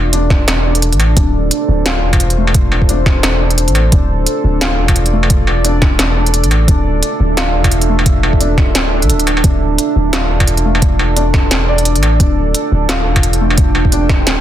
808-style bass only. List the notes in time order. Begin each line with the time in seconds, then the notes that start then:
Already playing: E1
0.30 D1
0.48 E1
0.92 A1
1.17 D1
1.68 D1
2.03 E1
3.06 D1
3.24 E1
3.68 A1
3.92 D1
4.44 D1
4.79 E1
5.82 D1
5.99 E1
6.44 A1
6.68 D1
7.20 D1
7.55 E1
8.58 D1
9.02 C2
9.10 D1
9.44 D1
9.96 D1
10.30 E1
11.34 D1
11.51 E1
11.96 A1
12.20 D1
12.72 D1
13.06 E1
14.09 D1